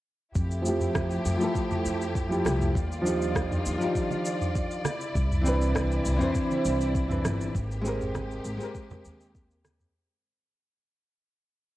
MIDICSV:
0, 0, Header, 1, 5, 480
1, 0, Start_track
1, 0, Tempo, 600000
1, 282, Time_signature, 4, 2, 24, 8
1, 9410, End_track
2, 0, Start_track
2, 0, Title_t, "Nylon-string guitar"
2, 0, Program_c, 0, 24
2, 496, Note_on_c, 0, 53, 71
2, 513, Note_on_c, 0, 57, 61
2, 531, Note_on_c, 0, 64, 62
2, 547, Note_on_c, 0, 67, 79
2, 1083, Note_off_c, 0, 53, 0
2, 1092, Note_off_c, 0, 57, 0
2, 1098, Note_on_c, 0, 53, 83
2, 1101, Note_off_c, 0, 64, 0
2, 1109, Note_off_c, 0, 67, 0
2, 1114, Note_on_c, 0, 57, 82
2, 1131, Note_on_c, 0, 64, 75
2, 1147, Note_on_c, 0, 69, 101
2, 1802, Note_off_c, 0, 53, 0
2, 1811, Note_off_c, 0, 57, 0
2, 1819, Note_off_c, 0, 64, 0
2, 1827, Note_off_c, 0, 69, 0
2, 1833, Note_on_c, 0, 53, 64
2, 1842, Note_on_c, 0, 57, 64
2, 1850, Note_on_c, 0, 64, 66
2, 1859, Note_on_c, 0, 67, 74
2, 2182, Note_off_c, 0, 53, 0
2, 2186, Note_off_c, 0, 57, 0
2, 2190, Note_off_c, 0, 64, 0
2, 2195, Note_off_c, 0, 67, 0
2, 2412, Note_on_c, 0, 53, 88
2, 2430, Note_on_c, 0, 62, 82
2, 2447, Note_on_c, 0, 63, 82
2, 2464, Note_on_c, 0, 67, 95
2, 3001, Note_off_c, 0, 53, 0
2, 3010, Note_off_c, 0, 62, 0
2, 3019, Note_off_c, 0, 63, 0
2, 3022, Note_on_c, 0, 53, 74
2, 3027, Note_off_c, 0, 67, 0
2, 3039, Note_on_c, 0, 62, 70
2, 3055, Note_on_c, 0, 63, 68
2, 3073, Note_on_c, 0, 67, 76
2, 3857, Note_off_c, 0, 53, 0
2, 3865, Note_off_c, 0, 62, 0
2, 3873, Note_off_c, 0, 63, 0
2, 3882, Note_off_c, 0, 67, 0
2, 4331, Note_on_c, 0, 52, 69
2, 4347, Note_on_c, 0, 60, 68
2, 4366, Note_on_c, 0, 62, 68
2, 4381, Note_on_c, 0, 71, 82
2, 4921, Note_off_c, 0, 52, 0
2, 4929, Note_off_c, 0, 60, 0
2, 4932, Note_on_c, 0, 52, 87
2, 4938, Note_off_c, 0, 62, 0
2, 4946, Note_off_c, 0, 71, 0
2, 4949, Note_on_c, 0, 60, 88
2, 4967, Note_on_c, 0, 62, 83
2, 4983, Note_on_c, 0, 72, 94
2, 5639, Note_off_c, 0, 52, 0
2, 5648, Note_off_c, 0, 60, 0
2, 5657, Note_off_c, 0, 62, 0
2, 5665, Note_off_c, 0, 72, 0
2, 5666, Note_on_c, 0, 52, 69
2, 5675, Note_on_c, 0, 60, 66
2, 5685, Note_on_c, 0, 62, 64
2, 5692, Note_on_c, 0, 71, 80
2, 6018, Note_off_c, 0, 52, 0
2, 6023, Note_off_c, 0, 60, 0
2, 6028, Note_off_c, 0, 62, 0
2, 6032, Note_off_c, 0, 71, 0
2, 6252, Note_on_c, 0, 56, 90
2, 6267, Note_on_c, 0, 60, 86
2, 6285, Note_on_c, 0, 67, 86
2, 6299, Note_on_c, 0, 70, 99
2, 6841, Note_off_c, 0, 56, 0
2, 6849, Note_off_c, 0, 60, 0
2, 6856, Note_on_c, 0, 56, 77
2, 6858, Note_off_c, 0, 67, 0
2, 6865, Note_off_c, 0, 70, 0
2, 6871, Note_on_c, 0, 60, 72
2, 6889, Note_on_c, 0, 67, 66
2, 6904, Note_on_c, 0, 70, 85
2, 7933, Note_off_c, 0, 56, 0
2, 7941, Note_off_c, 0, 60, 0
2, 7950, Note_off_c, 0, 67, 0
2, 7958, Note_off_c, 0, 70, 0
2, 9410, End_track
3, 0, Start_track
3, 0, Title_t, "String section"
3, 0, Program_c, 1, 48
3, 281, Note_on_c, 1, 64, 64
3, 284, Note_on_c, 1, 67, 83
3, 285, Note_on_c, 1, 53, 73
3, 287, Note_on_c, 1, 57, 63
3, 2182, Note_off_c, 1, 64, 0
3, 2184, Note_off_c, 1, 53, 0
3, 2184, Note_off_c, 1, 67, 0
3, 2185, Note_off_c, 1, 57, 0
3, 2198, Note_on_c, 1, 55, 63
3, 2200, Note_on_c, 1, 51, 70
3, 2200, Note_on_c, 1, 74, 67
3, 2202, Note_on_c, 1, 65, 85
3, 3863, Note_off_c, 1, 55, 0
3, 3864, Note_off_c, 1, 51, 0
3, 3866, Note_off_c, 1, 65, 0
3, 3892, Note_on_c, 1, 64, 81
3, 3893, Note_on_c, 1, 48, 74
3, 6009, Note_off_c, 1, 74, 0
3, 6026, Note_off_c, 1, 64, 0
3, 6050, Note_on_c, 1, 67, 85
3, 6057, Note_on_c, 1, 56, 68
3, 6057, Note_on_c, 1, 58, 67
3, 7936, Note_off_c, 1, 48, 0
3, 7947, Note_off_c, 1, 67, 0
3, 7950, Note_off_c, 1, 56, 0
3, 7950, Note_off_c, 1, 58, 0
3, 9410, End_track
4, 0, Start_track
4, 0, Title_t, "Upright bass"
4, 0, Program_c, 2, 32
4, 284, Note_on_c, 2, 41, 82
4, 957, Note_off_c, 2, 41, 0
4, 1003, Note_on_c, 2, 41, 78
4, 1096, Note_off_c, 2, 41, 0
4, 1484, Note_on_c, 2, 41, 73
4, 1917, Note_off_c, 2, 41, 0
4, 1970, Note_on_c, 2, 36, 87
4, 2149, Note_off_c, 2, 36, 0
4, 2206, Note_on_c, 2, 39, 88
4, 2878, Note_off_c, 2, 39, 0
4, 2929, Note_on_c, 2, 39, 78
4, 3019, Note_off_c, 2, 39, 0
4, 4121, Note_on_c, 2, 36, 86
4, 4796, Note_off_c, 2, 36, 0
4, 4847, Note_on_c, 2, 36, 82
4, 4938, Note_off_c, 2, 36, 0
4, 5323, Note_on_c, 2, 36, 79
4, 5757, Note_off_c, 2, 36, 0
4, 5803, Note_on_c, 2, 31, 87
4, 5985, Note_off_c, 2, 31, 0
4, 6042, Note_on_c, 2, 32, 97
4, 6716, Note_off_c, 2, 32, 0
4, 6755, Note_on_c, 2, 32, 86
4, 6852, Note_off_c, 2, 32, 0
4, 7243, Note_on_c, 2, 39, 87
4, 7917, Note_off_c, 2, 39, 0
4, 9410, End_track
5, 0, Start_track
5, 0, Title_t, "Drums"
5, 283, Note_on_c, 9, 82, 39
5, 284, Note_on_c, 9, 36, 96
5, 363, Note_off_c, 9, 82, 0
5, 364, Note_off_c, 9, 36, 0
5, 409, Note_on_c, 9, 82, 22
5, 489, Note_off_c, 9, 82, 0
5, 526, Note_on_c, 9, 82, 72
5, 606, Note_off_c, 9, 82, 0
5, 645, Note_on_c, 9, 45, 75
5, 647, Note_on_c, 9, 82, 29
5, 725, Note_off_c, 9, 45, 0
5, 727, Note_off_c, 9, 82, 0
5, 760, Note_on_c, 9, 63, 89
5, 761, Note_on_c, 9, 37, 71
5, 763, Note_on_c, 9, 36, 95
5, 763, Note_on_c, 9, 82, 35
5, 840, Note_off_c, 9, 63, 0
5, 841, Note_off_c, 9, 37, 0
5, 843, Note_off_c, 9, 36, 0
5, 843, Note_off_c, 9, 82, 0
5, 885, Note_on_c, 9, 82, 21
5, 965, Note_off_c, 9, 82, 0
5, 1004, Note_on_c, 9, 82, 74
5, 1084, Note_off_c, 9, 82, 0
5, 1126, Note_on_c, 9, 82, 31
5, 1206, Note_off_c, 9, 82, 0
5, 1242, Note_on_c, 9, 36, 98
5, 1243, Note_on_c, 9, 82, 39
5, 1322, Note_off_c, 9, 36, 0
5, 1323, Note_off_c, 9, 82, 0
5, 1366, Note_on_c, 9, 45, 68
5, 1368, Note_on_c, 9, 82, 20
5, 1369, Note_on_c, 9, 63, 59
5, 1446, Note_off_c, 9, 45, 0
5, 1448, Note_off_c, 9, 82, 0
5, 1449, Note_off_c, 9, 63, 0
5, 1485, Note_on_c, 9, 82, 69
5, 1565, Note_off_c, 9, 82, 0
5, 1611, Note_on_c, 9, 82, 35
5, 1691, Note_off_c, 9, 82, 0
5, 1722, Note_on_c, 9, 36, 101
5, 1727, Note_on_c, 9, 82, 41
5, 1802, Note_off_c, 9, 36, 0
5, 1807, Note_off_c, 9, 82, 0
5, 1853, Note_on_c, 9, 82, 20
5, 1933, Note_off_c, 9, 82, 0
5, 1959, Note_on_c, 9, 64, 81
5, 1968, Note_on_c, 9, 37, 73
5, 1970, Note_on_c, 9, 82, 70
5, 1972, Note_on_c, 9, 63, 92
5, 2039, Note_off_c, 9, 64, 0
5, 2048, Note_off_c, 9, 37, 0
5, 2050, Note_off_c, 9, 82, 0
5, 2052, Note_off_c, 9, 63, 0
5, 2089, Note_on_c, 9, 45, 76
5, 2091, Note_on_c, 9, 82, 33
5, 2169, Note_off_c, 9, 45, 0
5, 2171, Note_off_c, 9, 82, 0
5, 2202, Note_on_c, 9, 36, 103
5, 2211, Note_on_c, 9, 82, 42
5, 2282, Note_off_c, 9, 36, 0
5, 2291, Note_off_c, 9, 82, 0
5, 2334, Note_on_c, 9, 82, 22
5, 2414, Note_off_c, 9, 82, 0
5, 2448, Note_on_c, 9, 82, 79
5, 2528, Note_off_c, 9, 82, 0
5, 2573, Note_on_c, 9, 82, 31
5, 2653, Note_off_c, 9, 82, 0
5, 2680, Note_on_c, 9, 63, 86
5, 2682, Note_on_c, 9, 36, 98
5, 2686, Note_on_c, 9, 37, 71
5, 2688, Note_on_c, 9, 82, 40
5, 2760, Note_off_c, 9, 63, 0
5, 2762, Note_off_c, 9, 36, 0
5, 2766, Note_off_c, 9, 37, 0
5, 2768, Note_off_c, 9, 82, 0
5, 2811, Note_on_c, 9, 45, 78
5, 2814, Note_on_c, 9, 82, 22
5, 2891, Note_off_c, 9, 45, 0
5, 2894, Note_off_c, 9, 82, 0
5, 2924, Note_on_c, 9, 82, 80
5, 3004, Note_off_c, 9, 82, 0
5, 3049, Note_on_c, 9, 82, 33
5, 3129, Note_off_c, 9, 82, 0
5, 3162, Note_on_c, 9, 36, 100
5, 3165, Note_on_c, 9, 82, 44
5, 3242, Note_off_c, 9, 36, 0
5, 3245, Note_off_c, 9, 82, 0
5, 3286, Note_on_c, 9, 63, 69
5, 3289, Note_on_c, 9, 82, 20
5, 3366, Note_off_c, 9, 63, 0
5, 3369, Note_off_c, 9, 82, 0
5, 3402, Note_on_c, 9, 82, 78
5, 3482, Note_off_c, 9, 82, 0
5, 3530, Note_on_c, 9, 45, 77
5, 3532, Note_on_c, 9, 82, 35
5, 3610, Note_off_c, 9, 45, 0
5, 3612, Note_off_c, 9, 82, 0
5, 3642, Note_on_c, 9, 82, 42
5, 3643, Note_on_c, 9, 36, 109
5, 3722, Note_off_c, 9, 82, 0
5, 3723, Note_off_c, 9, 36, 0
5, 3766, Note_on_c, 9, 82, 22
5, 3846, Note_off_c, 9, 82, 0
5, 3879, Note_on_c, 9, 37, 71
5, 3879, Note_on_c, 9, 63, 101
5, 3881, Note_on_c, 9, 82, 72
5, 3959, Note_off_c, 9, 37, 0
5, 3959, Note_off_c, 9, 63, 0
5, 3961, Note_off_c, 9, 82, 0
5, 4005, Note_on_c, 9, 82, 34
5, 4085, Note_off_c, 9, 82, 0
5, 4122, Note_on_c, 9, 36, 102
5, 4125, Note_on_c, 9, 82, 42
5, 4202, Note_off_c, 9, 36, 0
5, 4205, Note_off_c, 9, 82, 0
5, 4250, Note_on_c, 9, 45, 72
5, 4253, Note_on_c, 9, 82, 23
5, 4330, Note_off_c, 9, 45, 0
5, 4333, Note_off_c, 9, 82, 0
5, 4366, Note_on_c, 9, 82, 76
5, 4446, Note_off_c, 9, 82, 0
5, 4491, Note_on_c, 9, 82, 33
5, 4571, Note_off_c, 9, 82, 0
5, 4600, Note_on_c, 9, 36, 105
5, 4600, Note_on_c, 9, 63, 86
5, 4605, Note_on_c, 9, 37, 70
5, 4607, Note_on_c, 9, 82, 40
5, 4680, Note_off_c, 9, 36, 0
5, 4680, Note_off_c, 9, 63, 0
5, 4685, Note_off_c, 9, 37, 0
5, 4687, Note_off_c, 9, 82, 0
5, 4731, Note_on_c, 9, 82, 24
5, 4811, Note_off_c, 9, 82, 0
5, 4843, Note_on_c, 9, 82, 80
5, 4923, Note_off_c, 9, 82, 0
5, 4964, Note_on_c, 9, 45, 72
5, 4966, Note_on_c, 9, 82, 37
5, 5044, Note_off_c, 9, 45, 0
5, 5046, Note_off_c, 9, 82, 0
5, 5080, Note_on_c, 9, 36, 104
5, 5080, Note_on_c, 9, 82, 45
5, 5160, Note_off_c, 9, 36, 0
5, 5160, Note_off_c, 9, 82, 0
5, 5207, Note_on_c, 9, 82, 21
5, 5210, Note_on_c, 9, 63, 65
5, 5287, Note_off_c, 9, 82, 0
5, 5290, Note_off_c, 9, 63, 0
5, 5320, Note_on_c, 9, 82, 78
5, 5400, Note_off_c, 9, 82, 0
5, 5447, Note_on_c, 9, 82, 35
5, 5527, Note_off_c, 9, 82, 0
5, 5560, Note_on_c, 9, 36, 107
5, 5564, Note_on_c, 9, 82, 42
5, 5640, Note_off_c, 9, 36, 0
5, 5644, Note_off_c, 9, 82, 0
5, 5686, Note_on_c, 9, 45, 70
5, 5689, Note_on_c, 9, 82, 22
5, 5766, Note_off_c, 9, 45, 0
5, 5769, Note_off_c, 9, 82, 0
5, 5800, Note_on_c, 9, 37, 73
5, 5802, Note_on_c, 9, 63, 84
5, 5802, Note_on_c, 9, 82, 82
5, 5806, Note_on_c, 9, 64, 78
5, 5880, Note_off_c, 9, 37, 0
5, 5882, Note_off_c, 9, 63, 0
5, 5882, Note_off_c, 9, 82, 0
5, 5886, Note_off_c, 9, 64, 0
5, 5928, Note_on_c, 9, 82, 35
5, 6008, Note_off_c, 9, 82, 0
5, 6039, Note_on_c, 9, 36, 94
5, 6045, Note_on_c, 9, 82, 43
5, 6119, Note_off_c, 9, 36, 0
5, 6125, Note_off_c, 9, 82, 0
5, 6171, Note_on_c, 9, 82, 23
5, 6251, Note_off_c, 9, 82, 0
5, 6283, Note_on_c, 9, 82, 74
5, 6363, Note_off_c, 9, 82, 0
5, 6407, Note_on_c, 9, 45, 69
5, 6409, Note_on_c, 9, 82, 31
5, 6487, Note_off_c, 9, 45, 0
5, 6489, Note_off_c, 9, 82, 0
5, 6519, Note_on_c, 9, 36, 101
5, 6520, Note_on_c, 9, 37, 68
5, 6522, Note_on_c, 9, 82, 43
5, 6530, Note_on_c, 9, 63, 98
5, 6599, Note_off_c, 9, 36, 0
5, 6600, Note_off_c, 9, 37, 0
5, 6602, Note_off_c, 9, 82, 0
5, 6610, Note_off_c, 9, 63, 0
5, 6648, Note_on_c, 9, 82, 25
5, 6728, Note_off_c, 9, 82, 0
5, 6758, Note_on_c, 9, 82, 79
5, 6838, Note_off_c, 9, 82, 0
5, 6884, Note_on_c, 9, 82, 33
5, 6964, Note_off_c, 9, 82, 0
5, 6999, Note_on_c, 9, 36, 108
5, 7000, Note_on_c, 9, 82, 44
5, 7079, Note_off_c, 9, 36, 0
5, 7080, Note_off_c, 9, 82, 0
5, 7122, Note_on_c, 9, 45, 73
5, 7124, Note_on_c, 9, 82, 20
5, 7129, Note_on_c, 9, 64, 85
5, 7131, Note_on_c, 9, 63, 73
5, 7202, Note_off_c, 9, 45, 0
5, 7204, Note_off_c, 9, 82, 0
5, 7209, Note_off_c, 9, 64, 0
5, 7211, Note_off_c, 9, 63, 0
5, 7241, Note_on_c, 9, 82, 78
5, 7321, Note_off_c, 9, 82, 0
5, 7366, Note_on_c, 9, 82, 34
5, 7446, Note_off_c, 9, 82, 0
5, 7479, Note_on_c, 9, 36, 110
5, 7481, Note_on_c, 9, 82, 41
5, 7559, Note_off_c, 9, 36, 0
5, 7561, Note_off_c, 9, 82, 0
5, 7605, Note_on_c, 9, 82, 22
5, 7685, Note_off_c, 9, 82, 0
5, 7717, Note_on_c, 9, 37, 73
5, 7718, Note_on_c, 9, 63, 92
5, 7719, Note_on_c, 9, 82, 76
5, 7797, Note_off_c, 9, 37, 0
5, 7798, Note_off_c, 9, 63, 0
5, 7799, Note_off_c, 9, 82, 0
5, 7841, Note_on_c, 9, 45, 73
5, 7843, Note_on_c, 9, 82, 36
5, 7921, Note_off_c, 9, 45, 0
5, 7923, Note_off_c, 9, 82, 0
5, 9410, End_track
0, 0, End_of_file